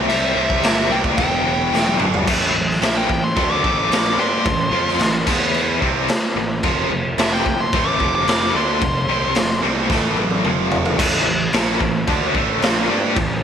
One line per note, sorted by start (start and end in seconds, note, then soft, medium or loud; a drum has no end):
0.00 0.10 C4 loud
0.09 0.33 C2 loud
0.09 0.35 C3 medium
0.09 0.36 G3 loud
0.09 0.36 C4 loud
0.09 0.93 E5 medium
0.09 crash medium
0.36 0.61 C2 medium
0.36 0.62 C3 medium
0.36 0.63 G3 medium
0.36 0.63 C4 loud
0.50 kick medium
0.63 0.88 G1 medium
0.63 0.89 C3 medium
0.63 0.90 G3 loud
0.63 0.91 C4 loud
0.63 snare loud
0.63 crash medium
0.90 1.15 C2 medium
0.90 1.16 C3 medium
0.90 1.17 G3 medium
0.90 1.17 C4 loud
0.90 0.99 G5 medium
1.04 kick medium
1.17 1.69 E1 loud
1.17 1.44 E2 medium
1.17 1.45 B2 medium
1.17 1.45 E3 medium
1.17 1.96 G5 medium
1.17 kick loud
1.17 crash medium
1.45 1.72 E2 medium
1.45 1.72 B2 medium
1.45 1.73 E3 loud
1.73 1.97 E1 medium
1.73 1.99 E2 medium
1.73 2.00 B2 loud
1.73 2.00 E3 loud
1.73 snare medium
1.86 high tom medium
1.99 2.24 G1 medium
1.99 2.26 E2 medium
1.99 2.26 B2 medium
1.99 2.26 E3 medium
1.99 mid tom loud
2.14 floor tom loud
2.27 2.53 A1 medium
2.27 2.54 A2 loud
2.27 2.54 E3 medium
2.27 2.55 A3 medium
2.27 kick loud
2.27 crash loud
2.27 crash medium
2.55 2.80 A1 medium
2.55 2.77 A2 medium
2.55 2.77 E3 medium
2.70 snare soft
2.81 3.07 A#1 loud
2.81 3.09 A#2 medium
2.81 3.09 F3 loud
2.81 3.09 A#3 loud
2.81 2.96 E5 medium
2.81 snare loud
2.81 crash medium
2.97 3.23 G5 medium
3.09 3.35 A1 medium
3.09 3.32 A2 medium
3.09 3.32 E3 medium
3.09 kick medium
3.24 3.52 C6 medium
3.37 3.62 D2 medium
3.37 3.63 D3 loud
3.37 3.64 A3 medium
3.37 3.64 D4 medium
3.37 kick loud
3.37 crash medium
3.52 3.77 D6 medium
3.64 3.89 A1 loud
3.64 3.91 A2 medium
3.64 3.91 E3 medium
3.64 3.92 A3 loud
3.64 kick medium
3.79 4.18 D6 loud
3.90 4.16 A#1 loud
3.90 4.18 A#2 medium
3.90 4.18 F3 loud
3.90 4.19 A#3 medium
3.90 snare loud
3.90 crash medium
4.17 4.43 G2 medium
4.17 4.45 G3 medium
4.17 4.45 D4 loud
4.17 4.46 G4 loud
4.17 5.25 C6 loud
4.45 4.71 A1 medium
4.45 4.68 A2 medium
4.45 4.68 E3 medium
4.45 kick loud
4.45 crash medium
4.72 4.98 F2 medium
4.72 4.99 F3 medium
4.72 5.00 C4 loud
4.72 5.00 F4 loud
4.88 snare soft
4.99 5.25 A1 medium
4.99 5.22 A2 medium
4.99 5.22 E3 medium
4.99 snare loud
4.99 crash medium
5.27 5.78 E2 medium
5.27 5.81 E3 medium
5.27 5.81 B3 medium
5.27 5.81 E4 loud
5.27 kick loud
5.27 crash loud
5.54 crash medium
5.82 6.07 C2 medium
5.82 6.08 C3 medium
5.82 6.09 G3 loud
5.82 6.09 C4 loud
5.82 kick medium
6.08 snare loud
6.08 crash medium
6.36 6.61 A1 medium
6.36 6.59 A2 medium
6.36 6.59 E3 medium
6.63 6.89 F1 medium
6.63 6.90 F2 medium
6.63 6.90 C3 loud
6.63 6.91 F3 loud
6.63 kick loud
6.63 crash medium
6.90 7.16 F1 medium
6.90 7.13 F2 medium
6.90 7.13 C3 medium
7.17 7.43 F1 medium
7.17 7.45 F2 loud
7.17 7.45 C3 loud
7.17 7.46 F3 loud
7.17 7.33 E5 loud
7.17 snare loud
7.17 crash medium
7.33 7.59 G5 medium
7.33 snare soft
7.46 7.71 F1 medium
7.46 7.68 F2 medium
7.46 7.68 C3 medium
7.46 kick medium
7.61 7.87 C6 medium
7.73 7.98 A1 loud
7.73 7.99 A2 loud
7.73 8.00 E3 loud
7.73 8.00 A3 loud
7.73 kick loud
7.73 crash medium
7.87 8.13 D6 medium
8.00 8.25 F1 loud
8.00 8.26 F2 medium
8.00 8.27 C3 loud
8.00 8.27 F3 loud
8.00 kick medium
8.15 8.54 D6 loud
8.27 8.52 F1 loud
8.27 8.54 F2 medium
8.27 8.54 C3 loud
8.27 8.54 F3 loud
8.27 snare loud
8.27 crash medium
8.54 8.79 D2 medium
8.54 8.81 D3 medium
8.54 8.81 A3 loud
8.54 8.81 D4 loud
8.54 9.61 C6 medium
8.82 9.07 F1 medium
8.82 9.03 F2 medium
8.82 9.04 C3 medium
8.82 kick loud
8.82 crash medium
9.09 9.34 C2 medium
9.09 9.35 C3 medium
9.09 9.36 G3 loud
9.09 9.36 C4 loud
9.35 9.61 F1 medium
9.35 9.58 F2 medium
9.35 9.59 C3 medium
9.35 snare loud
9.35 crash medium
9.51 snare soft
9.63 9.88 C2 medium
9.63 9.90 C3 loud
9.63 9.90 G3 medium
9.63 9.90 C4 loud
9.90 10.41 A1 loud
9.90 10.44 A2 medium
9.90 10.45 E3 loud
9.90 10.45 A3 medium
9.90 kick loud
9.90 snare medium
10.17 high tom medium
10.30 high tom medium
10.44 10.95 F1 loud
10.44 10.98 F2 medium
10.44 10.99 C3 medium
10.44 10.99 F3 loud
10.44 mid tom medium
10.71 floor tom loud
10.86 floor tom medium
10.99 11.24 A1 medium
10.99 11.25 A2 medium
10.99 11.26 E3 loud
10.99 11.26 A3 loud
10.99 kick loud
10.99 crash loud
10.99 crash medium
11.26 11.51 A1 medium
11.26 11.48 A2 medium
11.26 11.49 E3 medium
11.53 11.78 A#1 loud
11.53 11.80 A#2 medium
11.53 11.81 F3 loud
11.53 11.81 A#3 loud
11.53 snare loud
11.53 crash medium
11.80 12.06 A1 medium
11.80 12.03 A2 medium
11.80 12.03 E3 medium
11.80 kick medium
12.07 12.33 D2 loud
12.07 12.34 D3 medium
12.07 12.34 A3 loud
12.07 12.34 D4 loud
12.07 kick loud
12.07 crash medium
12.34 12.60 A1 loud
12.34 12.61 A2 medium
12.34 12.61 E3 medium
12.34 12.62 A3 medium
12.34 kick medium
12.62 12.88 A#1 loud
12.62 12.88 A#2 medium
12.62 12.88 F3 medium
12.62 12.89 A#3 loud
12.62 snare loud
12.62 crash medium
12.89 13.15 G2 medium
12.89 13.15 G3 medium
12.89 13.16 D4 medium
12.89 13.16 G4 loud
13.16 13.42 A1 medium
13.16 13.38 A2 medium
13.16 13.38 E3 medium
13.16 kick loud
13.16 crash medium